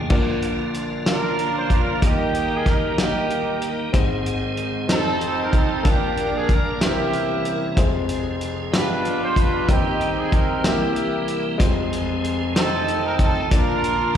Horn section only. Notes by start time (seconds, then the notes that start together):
1.09 D4 F4 A#4
1.57 C5
1.73 A#4
2.05 A#3 D#4 G4
2.54 G#4
2.70 A#4
3.01 A#3 D#4 G4
4.92 C4 D#4 A4
5.41 A#4
5.56 A4
5.87 A#3 D4 G4
6.36 G#4
6.52 A#4
6.83 A#3 E4 G4
8.75 D4 F4 B4
9.22 C5
9.38 B4
9.69 C4 D#4 G4
10.17 G#4
10.33 A#4
10.65 A#3 E4 G4
12.58 C4 D#4 A4
13.06 A#4
13.23 A4
13.54 D4 F4 A#4